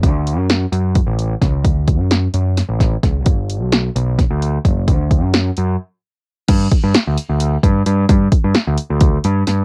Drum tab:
CC |-------|-------|-------|-------|
HH |xxxxxxx|xxxxxxx|xxxxxxx|xxxx---|
SD |--o---o|--o-ooo|--o-o--|--o----|
BD |o---o-o|oo---oo|o---o-o|oo-----|

CC |x------|-------|
HH |xxxxxxx|xxxxxxx|
SD |--o----|--o---o|
BD |oo---o-|oo--o--|